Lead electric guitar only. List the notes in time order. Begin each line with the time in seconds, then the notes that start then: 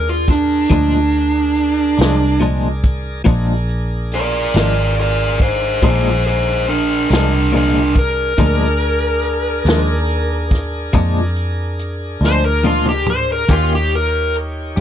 0.09 F4
0.30 D4
0.72 D4
4.14 A#4 D5
4.57 A#4 D5
5.00 A#4 D5
5.42 G#4 C5
5.84 G#4 C5
6.26 G#4 C5
6.69 D4 A#4
7.12 D4 A#4
7.55 D4 A#4
7.99 A#4
12.26 C5
12.45 A#4
12.66 F4
12.89 G4
13.10 C5
13.32 A#4
13.52 F4
13.75 G4
13.95 A#4